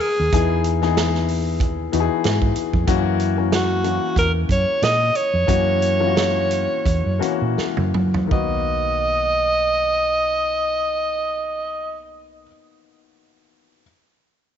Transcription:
Already playing: F#3 B3 D#4 F#4 A4 B4
0.00 G#4, open hi-hat
0.20 D#2
0.32 E2 E3 B3 D#4 G#4, kick, closed hi-hat
0.64 closed hi-hat
0.82 E3 B3 D#4 G#4, snare
0.97 snare, closed hi-hat
1.14 snare
1.28 open hi-hat
1.60 D#2, kick, closed hi-hat
1.92 E2 E3 B3 D#4 F#4, closed hi-hat
2.00 G#4
2.24 G#2, snare, closed hi-hat
2.42 kick
2.56 closed hi-hat
2.73 F2, kick
2.87 F#2 E3 A#3 C#4 F#4, kick, closed hi-hat
3.20 closed hi-hat
3.37 E3 A#3 C#4 F#4
3.52 F#4, snare, closed hi-hat
3.84 E3 A#3 C#4 F#4, closed hi-hat
4.16 E2 A#4, kick, closed hi-hat
4.49 F#2 C#5, kick, closed hi-hat
4.82 A#2 D#5, snare, closed hi-hat
5.15 C#5, closed hi-hat
5.34 F2
5.47 F#2 E3 A#3 C#4 F#4, kick, closed hi-hat
5.82 closed hi-hat
5.99 E3 A#3 C#4 F4
6.07 F#4
6.17 snare, closed hi-hat
6.51 closed hi-hat
6.86 E2, kick, closed hi-hat
7.06 F#2
7.19 E3 A#3 C#4 F#4, closed hi-hat
7.42 A#2
7.58 muted fingered electric bass stroke, snare
7.77 F#2, high tom
7.94 F#3, mid tom
8.14 floor tom
8.27 D#3 A#3 B3
8.31 B1 F#4 D#5, kick

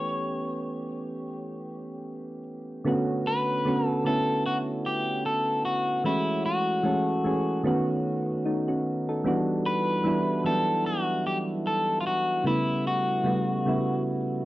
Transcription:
Already playing: E3 A3 B3 C#4 G4 C#5
2.84 D3 A3 B3 C#4 F#4
3.27 B4
3.65 D3 A3 B3 C#4 F#4
3.86 A4
4.04 D3 A3 B3 C#4 E4 A4
4.46 F#4
4.86 G4
5.26 A4
5.66 F#4
6.04 E3 G#3 A3 C#4 E4 F#4
6.46 F#4
6.83 E3 G#3 A3 C#4 A4
7.24 E3 G#3 A3 C#4 G#4
7.64 D#3 A3 B3 C#4 F#4
8.45 A3 D#4
8.68 C#4 F#4
9.09 D#4 A4
9.24 E3 G3 B3 D4 F#4
9.66 B4
10.04 E3 G3 B3 D4 E4
10.44 E3 F#3 B3 D4 E4 A4
10.51 G3
10.86 F#4
11.27 G4
11.67 A4
12.01 F4
12.07 F#4
12.44 C#3 G3 A3 B3 E4
12.87 F#4
13.23 C#3 G3 A3 B3 F#4
13.65 C#3 G3 A3 B3 E4

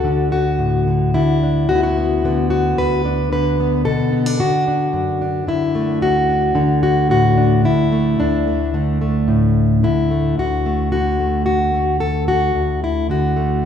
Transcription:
Already playing: D2 F#4 A4
0.04 D3
0.32 F#4
0.59 A2
0.87 D3
1.14 D3 E4
1.43 D4
1.69 D2 D3 B3 F#4
1.75 E4
1.83 F#4
1.98 B3
2.24 D3 B3
2.50 F#4
2.78 D2 B4
3.05 D4
3.32 D3 B4
3.60 B3
3.85 B2 A4
4.12 B3
4.26 D4
4.39 D3 F#4
4.68 D4
4.93 F#2
5.22 D4
5.47 D3 E4
5.75 A3
6.01 D2 F#4
6.29 D4
6.55 D3 D4
6.83 F#4
7.09 A2 F#4
7.37 D4
7.64 D3 E4
7.92 A3
8.19 D2 D4
8.47 A3
8.74 D3 A3
9.01 A3
9.28 A2
9.83 D3 E4
10.11 A3
10.38 D2 F#4
10.66 A3
10.92 D3 F#4
11.20 A3
11.46 F#4
11.75 A3
12.00 A4
12.28 F#4
12.55 D2
12.84 E4
13.10 D3 F#4
13.37 A3

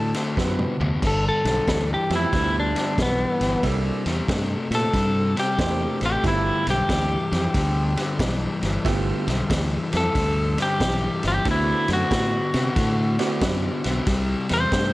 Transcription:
Already playing: A2 D3 A3 A5
0.14 D3 A3, snare, ride
0.37 F#2 D3 B3 C4 E4 F#4 B4, kick, snare
0.59 mid tom
0.80 D2 D3 B3, floor tom
1.02 G1 G2 D3, kick, snare, crash
1.07 A4
1.29 A4
1.45 B1 G2 D3, snare, ride
1.68 D2 G2 E3, kick, snare, ride
1.94 G4
2.10 F2 G2 E3 F3 A3 B3 E4 G4, snare, ride
2.16 E4
2.32 D2 G2 D3, kick, snare, ride
2.60 D4
2.75 G2 D3, snare, ride
2.98 B1 G2 E3, kick, snare, ride
3.02 B3
3.40 G1 G2 E3, snare, ride
3.63 C2 C3 G3 A#3 C4 D4 E4 A4, kick, snare, ride
4.06 E2 C3 G3, snare, ride
4.28 G2 C3 A3, kick, snare, ride
4.71 A#2 C3 A3, snare, ride
4.75 A4
4.94 G2 C3 G3, kick, snare, ride
5.36 C3 G3 G4, snare, ride
5.59 E2 C3 A3 A#3 C4 D4 E4 C5, kick, snare, ride
6.01 A1 C3 A3, snare, ride
6.06 G4
6.23 G1 G2 D3 A3 B3 E4 F4 G4, kick, snare, ride
6.28 E4
6.66 B1 G2 D3, snare, ride
6.70 G4
6.88 D2 G2 E3, kick, snare, ride
7.32 F2 G2 E3, snare, ride
7.54 D2 G2 D3, kick, snare, ride
7.96 G2 D3, snare, ride
8.19 B1 G2 E3, kick, snare, ride
8.62 G1 G2 E3, snare, ride
8.85 G1 G2 D3 A3 B3 E4 F4 G4, kick, snare, ride
9.27 B1 G2 D3, snare, ride
9.50 D2 G2 E3, kick, snare, ride
9.92 F2 G2 E3, snare, ride
9.97 A4
10.15 D2 G2 D3, kick, snare, ride
10.58 G2 D3, snare, ride
10.62 G4
10.80 B1 G2 E3, kick, snare, ride
11.23 G1 G2 E3, snare, ride
11.28 G4
11.45 D2 D3 A3 B3 C4 D4 E4 F#4, kick, snare, ride
11.51 E4
11.88 F#2 D3 A3, snare, ride
11.93 F#4
12.11 A2 D3 B3, kick, snare, ride
12.54 C3 D3 B3, snare, ride
12.76 A2 D3 A3, kick, snare, ride
13.19 D3 A3 B3 C4 D4 E4 F#4, snare, ride
13.41 F#2 D3 B3, kick, snare, ride
13.84 B1 D3 B3, snare, ride
14.07 C2 C3 G3, kick, snare, ride
14.49 E2 C3 G3, snare, ride
14.54 C5
14.72 G2 C3 A3, kick, snare, ride

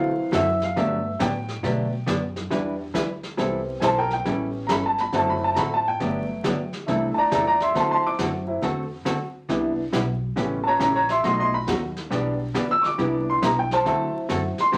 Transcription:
Already playing: D2 D3 E3 F#3 A3 C4 F#4 A4 F5
0.32 F#2 D3 A3 C4 F#4 A4 E5, snare, hi-hat pedal
0.61 F5, snare
0.76 G2 D3 F#3 A3 B3 D4 F#4 G4 E5, brush sweep, snare
1.19 A2 D3 F#3 B3 D4 G4 G5, snare, hi-hat pedal
1.48 snare
1.63 B2 D3 F#3 A3 B3 D4 F#4 G4, brush sweep, snare
2.07 F#2 D3 F#3 B3 D4 G4, snare, hi-hat pedal
2.36 snare
2.50 E2 E3 G3 D4 E4 F#4 B4, brush sweep, snare
2.94 D2 E3 G3 D4 E4 B4, snare, hi-hat pedal
3.23 snare
3.37 C2 E3 G3 B3 C4 E4 A4, brush sweep, snare
3.80 B1 E3 G3 C4 E4 A4 C5 G#5, snare, hi-hat pedal
3.84 A5
3.98 A#4 G5
4.10 G5, snare
4.25 A1 E3 G3 B3 C#4 E4 A4, brush sweep, snare
4.67 G1 E3 G3 C#4 E4 A4 A#5, snare, hi-hat pedal
4.71 B5
4.86 A5
4.98 B5, snare
5.12 F#1 D3 F#3 A3 C4 E4 F#4 A4 A5, brush sweep, snare
5.30 B5
5.44 A5
5.54 A1 D3 A3 C4 F#4 A4 A#5, snare, hi-hat pedal
5.59 B5
5.74 A5
5.88 G5
6.00 G1 D3 F#3 A3 B3 D4 G4, brush sweep, snare
6.43 D2 D3 F#3 B3 D4 G4, snare, hi-hat pedal
6.73 snare
6.86 C2 C3 E3 G3 A3 C4 D4 E4 A4, brush sweep, snare
7.14 D5 A5, muted upright bass stroke
7.19 A#5
7.31 E2 C3 E3 G3 C4 E4 A4 D5 A#5, snare, hi-hat pedal
7.47 D5 A#5
7.60 E5 C6, snare
7.74 D2 D3 F#3 A3 C4 E4 F#4 A4 A5 C6, brush sweep, snare
7.91 A5 C6
8.06 D6
8.18 F#2 D3 A3 C4 F#4 A4, snare, hi-hat pedal
8.47 F#3 C4 E4
8.62 E2 D3 A3 C4 F#4 A4, brush sweep, snare
9.05 D2 D3 A3 C4 F#4 A4, snare, hi-hat pedal
9.49 C2 C3 E3 G3 B3 D4 E4 G4, brush sweep, snare
9.92 B1 C3 G3 B3 E4 G4, snare, hi-hat pedal
10.36 A1 C#3 E3 G3 A3 B3 C#4 G4, brush sweep, snare
10.64 C#5 A5
10.68 A#5
10.79 A#1 C#3 E3 A3 C#4 G4 C#5 A#5, snare, hi-hat pedal
10.96 C#5 A#5
11.09 E5 C6, snare
11.23 B1 B2 F#3 A3 D#4 F#4 D#5 C6, brush sweep, snare
11.39 D#5 C6
11.54 B5
11.67 D#2 B2 F#3 A3 D#4 F#4, snare, hi-hat pedal
11.97 snare
12.10 B1 B2 E3 F#3 G3 B3 D4 G4, brush sweep, snare
12.54 D2 B2 E3 B3 D4 G4, snare, hi-hat pedal
12.71 E6
12.82 C#6, snare
12.86 D6
12.98 C2 C3 E3 G3 B3 D4 E4 G4, brush sweep, snare
13.30 C6
13.42 B1 C3 G3 B3 E4 G4 A#5, snare, hi-hat pedal
13.59 G5
13.71 C5 A5, snare
13.85 D2 D3 F#3 A3 C4 E4 F#4 A4, brush sweep, snare
14.29 F#2 D3 A3 C4 F#4 A4, snare, hi-hat pedal
14.58 C6, muted upright bass stroke, snare
14.72 G2 D3 F#3 B3 D4 G4, brush sweep, snare

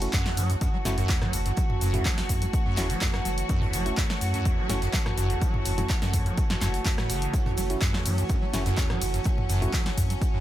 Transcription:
Already playing: E3 A3 F#4 C#5 F#5 A5
0.02 A3 C#4 E4 F#4, closed hi-hat, shaker
0.13 F#2, kick, snare, clap, closed hi-hat, shaker
0.26 E2, snare
0.37 F#2 F#3, open hi-hat, shaker
0.50 F#1, closed hi-hat, shaker
0.61 F#2, kick, closed hi-hat, shaker
0.74 F#3
0.85 F#1 A3 C#4 E4 F#4, snare, mid tom, open hi-hat, shaker
0.98 F#2, snare, closed hi-hat, shaker
1.09 E2, kick, snare, clap, closed hi-hat, shaker
1.22 F#3, cross-stick, snare, mid tom
1.33 F#1, open hi-hat, shaker
1.46 F#2, closed hi-hat, shaker
1.57 F#3, kick, closed hi-hat, shaker
1.70 mid tom
1.81 F#1 F#2, open hi-hat, shaker
1.93 E2 A3 C#4 E4 F#4, closed hi-hat, mid tom, shaker
2.05 F#3, kick, snare, clap, closed hi-hat, shaker
2.18 F#1, snare, open hi-hat
2.29 F#2, kick, open hi-hat, shaker
2.42 F#3, closed hi-hat, shaker
2.53 kick, closed hi-hat, shaker
2.66 F#2
2.77 F#1 E2 A3 C#4 E4 F#4, snare, clap, open hi-hat, shaker
2.90 F#3, closed hi-hat, shaker
3.01 F#1, kick, snare, clap, closed hi-hat, mid tom, shaker
3.14 F#2, cross-stick, snare
3.25 F#1 F#3, open hi-hat, shaker
3.38 closed hi-hat, shaker
3.49 F#2, kick, closed hi-hat, shaker
3.62 E2, closed hi-hat, mid tom
3.73 F#1 F#3, open hi-hat, shaker
3.86 F#1 A3 C#4 E4 F#4, closed hi-hat, shaker
3.97 F#2, kick, snare, clap, closed hi-hat, shaker
4.09 F#3, snare
4.21 F#2, open hi-hat, shaker
4.34 F#2, closed hi-hat, shaker
4.45 E2, kick, closed hi-hat, shaker
4.58 F#3
4.69 F#1 A3 C#4 E4 F#4, snare, mid tom, open hi-hat, shaker
4.82 F#2, snare, closed hi-hat, shaker
4.93 F#3, kick, snare, clap, closed hi-hat, shaker
5.06 cross-stick, snare, mid tom
5.17 F#1 F#2, open hi-hat, shaker
5.30 E2, closed hi-hat, shaker
5.42 F#3, kick, closed hi-hat, shaker
5.54 F#1, mid tom
5.65 F#1 F#2, open hi-hat, shaker
5.78 F#3 A3 C#4 E4 F#4, closed hi-hat, mid tom, shaker
5.89 kick, snare, clap, closed hi-hat, shaker
6.02 F#2, snare, open hi-hat, shaker
6.13 E2 F#2, kick, open hi-hat, shaker
6.26 F#3, closed hi-hat, shaker
6.38 F#1, kick, closed hi-hat, shaker
6.50 F#2, snare
6.61 F#1 F#2, snare, clap, open hi-hat, shaker
6.74 closed hi-hat, shaker
6.85 F#2, kick, snare, clap, closed hi-hat, mid tom, shaker
6.98 A2, cross-stick, snare
7.10 F#1 C#3, open hi-hat, shaker
7.22 closed hi-hat, shaker
7.33 F#1 C#4, kick, closed hi-hat, shaker
7.46 F#2, closed hi-hat, mid tom
7.57 F#1 F#3, open hi-hat, ride, shaker
7.70 A3 C#4 E4 F#4, closed hi-hat, shaker
7.81 F#2, kick, snare, clap, closed hi-hat, shaker
7.94 E2, snare
8.05 F#2 F#3, open hi-hat, ride, shaker
8.17 F#1, closed hi-hat, shaker
8.29 F#2, kick, closed hi-hat, shaker
8.42 F#3
8.53 F#1 A3 C#4 E4 F#4, snare, mid tom, open hi-hat, ride, shaker
8.65 F#2, snare, closed hi-hat, shaker
8.77 E2, kick, snare, clap, closed hi-hat, shaker
8.90 F#3, cross-stick, snare, mid tom
9.01 F#1, open hi-hat, ride, shaker
9.14 F#2, closed hi-hat, shaker
9.24 F#3, kick, closed hi-hat, shaker
9.26 shaker
9.38 mid tom
9.49 F#1 F#2, open hi-hat, ride, shaker
9.62 E2 A3 C#4 E4 F#4, closed hi-hat, mid tom, shaker
9.73 F#3, kick, snare, clap, closed hi-hat, shaker
9.86 F#1, snare, open hi-hat
9.97 F#2, kick, open hi-hat, ride, shaker
10.10 F#3, closed hi-hat, shaker
10.22 kick, closed hi-hat, shaker
10.34 F#2

